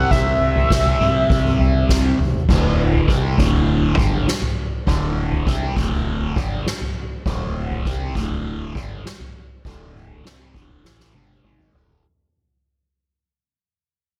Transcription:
Already playing: distorted electric guitar C3 G3 C4, analog synth lead F#5
0.11 fingered electric bass C2, analog synth lead E5, kick, floor tom
0.41 fingered electric bass C2
0.56 floor tom
0.71 fingered electric bass C2, kick, snare
0.86 floor tom
1.00 fingered electric bass C2, distorted electric guitar C3 G3 C4, mid tom
1.30 fingered electric bass C2, kick, floor tom
1.45 mid tom
1.59 fingered electric bass C2, floor tom
1.89 fingered electric bass C2, kick, snare
2.19 fingered electric bass C2, mid tom
2.34 floor tom
2.49 fingered electric bass D1, distorted electric guitar D2 A2 D3, kick, floor tom, crash
2.93 floor tom
3.08 fingered electric bass C2, distorted electric guitar C3 G3 C4, kick
3.38 fingered electric bass D1, distorted electric guitar D2 A2 D3, kick
3.53 floor tom
3.98 fingered electric bass G1, distorted electric guitar G2 D3 G3, kick, floor tom, mid tom
4.28 snare
4.42 floor tom
4.87 fingered electric bass D1, distorted electric guitar D2 A2 D3, kick, floor tom
5.32 floor tom
5.47 fingered electric bass C2, distorted electric guitar C3 G3 C4, kick
5.77 fingered electric bass D1, distorted electric guitar D2 A2 D3, kick
5.91 floor tom
6.36 fingered electric bass G1, distorted electric guitar G2 D3 G3, kick, floor tom, mid tom
6.66 snare
6.81 floor tom
7.26 fingered electric bass D1, distorted electric guitar D2 A2 D3, kick, floor tom
7.71 floor tom
7.85 fingered electric bass C2, distorted electric guitar C3 G3 C4, kick
8.15 fingered electric bass D1, distorted electric guitar D2 A2 D3, kick
8.30 floor tom
8.75 fingered electric bass G1, distorted electric guitar G2 D3 G3, kick, floor tom, mid tom
9.06 snare
9.20 floor tom
9.65 fingered electric bass D1, distorted electric guitar D2 A2 D3, kick, floor tom
9.95 mid tom
10.10 floor tom
10.24 fingered electric bass C2, distorted electric guitar C3 G3 C4, snare
10.55 fingered electric bass D1, distorted electric guitar D2 A2 D3, kick
10.69 floor tom
10.85 fingered electric bass A1, distorted electric guitar A2 E3 A3, snare
11.00 snare
11.14 fingered electric bass G1, distorted electric guitar G2 D3 G3, high tom
11.29 high tom
11.44 fingered electric bass G#1, distorted electric guitar G#2 D#3 G#3, mid tom
11.59 mid tom
11.74 fingered electric bass D1, distorted electric guitar D2 A2 D3, floor tom
11.89 floor tom

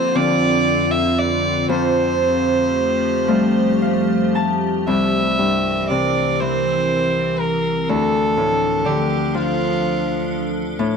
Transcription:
Already playing: ambient pad F2 D3 C4 F4, harp F2 A#3, fiddle C5
0.15 harp D3 F3 C4, fiddle D5
0.92 fiddle E5
1.19 fiddle D5
1.68 harp F2, ambient pad F3 A3 G4, fiddle C5
3.28 harp F3 G3 A3
3.82 harp F5
4.35 harp A5
4.84 harp C2, ambient pad E3 C4 A#4, fiddle E5
5.39 harp G2
5.89 harp C3, fiddle D5
6.40 harp E3, fiddle C5
7.40 fiddle A#4
7.89 harp D2, ambient pad F3 D4 A4, fiddle A4
8.37 harp A2
8.85 harp D3, fiddle G4
9.34 harp F3, fiddle F4
10.77 harp A2, ambient pad E3 C4

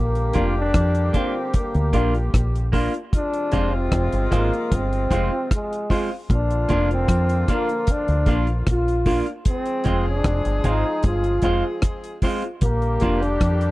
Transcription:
Already playing: fingered electric bass A#1, horn section D3 G3 A#3 G4
0.00 trombone A#3
0.15 closed hi-hat
0.33 fingered electric bass F1, clean electric guitar A#3 D4 F4, upright piano F4 A#4 D5 F5, kick, closed hi-hat
0.58 trombone D4
0.74 fingered electric bass F2, kick, cross-stick, closed hi-hat
0.95 closed hi-hat
1.13 clean electric guitar A#3 D4 F4, trombone C4, upright piano F4 A#4 D5 F5, kick, closed hi-hat
1.54 trombone A#3, kick, closed hi-hat
1.75 fingered electric bass D2, closed hi-hat
1.93 fingered electric bass A#1, clean electric guitar A#3 D4 F4, upright piano F4 A#4 D5 F5, kick, closed hi-hat
2.15 closed hi-hat
2.34 fingered electric bass A#1, kick, cross-stick, closed hi-hat
2.56 closed hi-hat
2.72 clean electric guitar A#3 D4 F4, upright piano F4 A#4 D5 F5, kick, open hi-hat
2.94 closed hi-hat
3.13 horn section C3 F3 G#3 F4, trombone D4, kick, closed hi-hat
3.34 closed hi-hat
3.52 fingered electric bass F1, clean electric guitar G#3 C4 F4, upright piano F4 G#4 C5 F5, kick, closed hi-hat
3.76 trombone C4
3.92 fingered electric bass F1, kick, cross-stick, closed hi-hat
4.12 fingered electric bass G1, closed hi-hat
4.31 fingered electric bass G#1, clean electric guitar G#3 C4 F4, trombone A#3, upright piano F4 G#4 C5 F5, kick, cross-stick, closed hi-hat
4.53 closed hi-hat
4.72 fingered electric bass G1, trombone C4, kick, closed hi-hat
4.93 closed hi-hat
5.10 fingered electric bass F1, clean electric guitar G#3 C4 F4, upright piano F4 G#4 C5 F5, kick, closed hi-hat
5.51 trombone G#3, kick, cross-stick, closed hi-hat
5.73 closed hi-hat
5.90 clean electric guitar G#3 C4 F4, upright piano F4 G#4 C5 F5, kick, open hi-hat
6.29 fingered electric bass A#1, horn section D3 F3 A#3 F4, kick, closed hi-hat
6.33 trombone D4
6.51 closed hi-hat
6.69 fingered electric bass F1, clean electric guitar A#3 D4 F4, upright piano F4 A#4 D5 F5, kick, closed hi-hat
6.91 trombone C4, closed hi-hat
7.08 fingered electric bass F2, kick, cross-stick, closed hi-hat
7.29 closed hi-hat
7.48 clean electric guitar A#3 D4 F4, trombone A#3, upright piano F4 A#4 D5 F5, kick, cross-stick, closed hi-hat
7.69 closed hi-hat
7.87 trombone D4, kick, closed hi-hat
8.08 fingered electric bass D2, closed hi-hat
8.26 fingered electric bass A#1, clean electric guitar A#3 D4 F4, upright piano F4 A#4 D5 F5, kick, closed hi-hat
8.47 closed hi-hat
8.67 fingered electric bass A#1, trombone F4, kick, cross-stick, closed hi-hat
8.88 closed hi-hat
9.06 clean electric guitar A#3 D4 F4, upright piano F4 A#4 D5 F5, kick, open hi-hat
9.26 closed hi-hat
9.45 horn section F3 G#3 C4 G#4, trombone C4, kick, closed hi-hat
9.66 closed hi-hat
9.84 fingered electric bass F1, clean electric guitar G#3 C4 F4, upright piano F4 G#4 C5 F5, kick, closed hi-hat
10.08 trombone D4
10.24 fingered electric bass F1, kick, cross-stick, closed hi-hat
10.45 fingered electric bass G1, closed hi-hat
10.64 fingered electric bass G#1, clean electric guitar G#3 C4 F4, trombone D#4, upright piano F4 G#4 C5 F5, kick, closed hi-hat
11.03 fingered electric bass G1, trombone F4, kick, closed hi-hat
11.24 closed hi-hat
11.42 fingered electric bass F1, clean electric guitar G#3 C4 F4, upright piano F4 G#4 C5 F5, kick, closed hi-hat
11.82 kick, cross-stick, closed hi-hat
12.04 closed hi-hat
12.22 clean electric guitar G#3 C4 F4, upright piano F4 G#4 C5 F5, kick, open hi-hat
12.42 closed hi-hat
12.61 fingered electric bass A#1, horn section D3 G3 A#3 G4, trombone A#3, kick, closed hi-hat
12.82 closed hi-hat
13.00 fingered electric bass F1, clean electric guitar A#3 D4 F4, upright piano F4 A#4 D5 F5, kick, closed hi-hat
13.22 trombone D4, closed hi-hat
13.41 fingered electric bass F2, kick, cross-stick, closed hi-hat
13.61 closed hi-hat

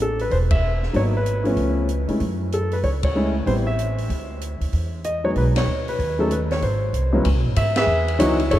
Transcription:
Already playing: upright bass A1
0.02 grand piano A4
0.19 grand piano B4, open hi-hat
0.31 upright bass E1, grand piano C5, kick, open hi-hat
0.51 grand piano E5, kick, ride
0.83 snare
0.93 upright bass G#1, grand piano F#3 A#3 B3 D#4 C#5, kick, open hi-hat
1.17 grand piano B4
1.26 closed hi-hat
1.44 grand piano F3 A3 B3 C#4, open hi-hat
1.56 upright bass C#2, kick, open hi-hat
1.89 closed hi-hat
2.08 upright bass C#3, grand piano G#3 A3 C#4 E4, open hi-hat
2.20 upright bass F#2, kick, open hi-hat
2.52 grand piano A4, closed hi-hat
2.71 grand piano B4, open hi-hat
2.83 upright bass C#2, grand piano C#5, kick, open hi-hat
3.03 grand piano C#5, kick, ride
3.14 grand piano G#3 A3 C#4 E4
3.46 upright bass A1, grand piano G3 B3 C4 E4 C5, kick, open hi-hat
3.67 grand piano E5
3.79 closed hi-hat
3.98 open hi-hat
4.10 upright bass D2, kick, open hi-hat
4.41 closed hi-hat
4.61 upright bass D2, open hi-hat
4.73 upright bass E2, kick, open hi-hat
5.04 grand piano D#5, closed hi-hat
5.24 grand piano F#3 G#3 B3 D#4 C#5
5.35 upright bass B1, grand piano B4, kick, open hi-hat
5.56 grand piano C#5, snare, ride
5.66 upright bass D2
5.88 grand piano B4, open hi-hat
5.99 upright bass D#2, kick, open hi-hat
6.19 grand piano F#3 A3 C#4 D#4 A4
6.31 grand piano B4, closed hi-hat
6.51 grand piano C#5, snare, open hi-hat
6.62 upright bass G#1, grand piano C5, kick, open hi-hat
6.93 upright bass C2, closed hi-hat
7.13 grand piano C#2 E3 F#3 B3 C#4
7.25 upright bass C#2, kick, ride
7.34 upright bass B1
7.45 upright bass G#1
7.56 upright bass G#2, grand piano E5, kick, hi-hat pedal, ride
7.76 grand piano G#4 B4 E5, snare, ride
7.87 upright bass E2
8.08 ride
8.19 upright bass C#2, grand piano E3 F#3 B3 D#4 E4 F#4 C#5, kick, hi-hat pedal, ride
8.39 ride
8.51 upright bass F#1, grand piano E4 A4 C#5, kick, ride

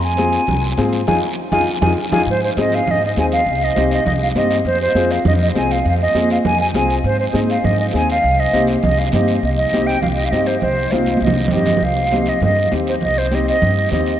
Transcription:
Already playing: upright bass F2
0.03 flute G#5
0.17 upright piano C4 F4 G#4, high conga, short guiro
0.32 short guiro
0.47 upright bass C2, high conga, low conga, long guiro
0.77 upright bass G#2, upright piano C4 F4 G#4, high conga, short guiro
0.93 short guiro
1.07 upright bass F2, upright piano D#4 F4 G#4, flute G#5, low conga, long guiro
1.52 upright bass F2, upright piano D#4 F4 G#4, flute G#5, low conga, long guiro
1.82 upright bass F2, upright piano D#4 F4 G#4, flute G#5, low conga, long guiro
2.12 upright bass F2, upright piano D#4 F4 G#4, flute G#5, low conga
2.27 upright bass G#2, flute C5, high conga, long guiro
2.44 flute C5
2.57 upright bass G#2, upright piano C4 D#4 G#4, flute D#5, high conga, short guiro
2.72 flute F5, short guiro
2.86 upright bass G#2, high conga, low conga, long guiro
2.91 flute D#5
3.06 flute D#5
3.16 upright bass D#2, upright piano C4 D#4 G#4, flute G#5, high conga, short guiro
3.32 flute F5, short guiro
3.46 upright bass C2, high conga, long guiro
3.64 flute D#5
3.76 upright bass C2, upright piano C4 D#4 G4, high conga, short guiro
3.91 flute D#5, short guiro
4.06 upright bass C2, flute D#5, high conga, low conga, long guiro
4.23 flute F5
4.35 upright bass G2, upright piano C4 D#4 G4, flute D#5, high conga, short guiro
4.51 short guiro
4.65 upright bass F2, flute C5, high conga, long guiro
4.82 flute C5
4.95 upright bass F2, upright piano C4 F4 G#4, high conga, short guiro
5.11 flute F5, short guiro
5.25 upright bass F2, flute D#5, high conga, low conga, long guiro
5.43 flute D#5
5.55 upright piano C4 F4 G#4, flute G#5, high conga, short guiro
5.71 flute F5, short guiro
5.85 upright bass F2, flute F5, high conga, long guiro
6.02 flute D#5
6.15 upright bass F2, upright piano C4 F4 G#4, high conga, short guiro
6.30 flute F5, short guiro
6.45 upright bass F2, flute G#5, high conga, low conga, long guiro
6.61 flute G#5
6.74 upright bass C2, upright piano C4 F4 G#4, flute G#5, high conga, short guiro
6.90 short guiro
7.04 upright bass G#2, flute C5, high conga, long guiro
7.20 flute C5
7.33 upright bass G#2, upright piano C4 D#4 G#4, flute D#5, high conga, short guiro
7.50 flute F5, short guiro
7.61 upright bass G#2, flute F5, high conga, low conga
7.65 flute D#5, long guiro
7.80 flute D#5
7.93 upright bass D#2, upright piano C4 D#4 G#4, flute G#5, high conga, short guiro
8.10 flute F5, short guiro
8.24 upright bass C2, high conga, long guiro
8.40 flute D#5
8.53 upright bass C2, upright piano C4 D#4 G4, high conga, short guiro
8.67 short guiro
8.83 upright bass C2, flute D#5, high conga, low conga, long guiro
8.99 flute F5
9.12 upright bass G2, upright piano C4 D#4 G4, flute D#5, high conga, low conga, short guiro
9.28 short guiro
9.42 upright bass C2, flute D#5, high conga, long guiro
9.57 flute D#5
9.73 upright bass C2, upright piano C4 D#4 G4, high conga, short guiro
9.87 flute G5, short guiro
10.02 upright bass C2, flute F5, high conga, low conga, long guiro
10.16 flute D#5
10.25 flute F5
10.31 upright bass G2, upright piano C4 D#4 G4, flute D#5, high conga, short guiro
10.46 flute C5, short guiro
10.61 upright bass C2, flute C5, high conga, low conga, long guiro
10.90 upright bass C2, upright piano C4 D#4 F4, flute F5, high conga, short guiro
11.06 high conga, short guiro
11.17 high conga, long guiro
11.22 upright bass C2, flute D#5
11.27 low conga
11.48 upright bass G2, upright piano C4, low conga, short guiro
11.52 upright piano D#4 G4, flute D#5
11.57 low conga
11.66 low conga, short guiro
11.77 low conga, long guiro
11.81 upright bass C2, flute F5, high conga
12.11 upright piano C4 D#4 G4, high conga, short guiro
12.26 flute D#5, short guiro
12.40 upright bass G2, flute D#5, high conga, low conga, long guiro
12.71 upright bass D#2, upright piano C4 D#4 G4, high conga, short guiro
12.87 flute C5, short guiro
13.01 upright bass C2, flute D#5, high conga, low conga, long guiro
13.18 flute C5
13.31 upright piano C4 D#4 G4, flute D#5, high conga, short guiro
13.48 flute D#5, short guiro
13.62 upright bass G2, high conga, low conga, long guiro
13.91 upright bass D#2, upright piano C4 D#4 G4, flute D#5, high conga, low conga, short guiro
14.06 short guiro

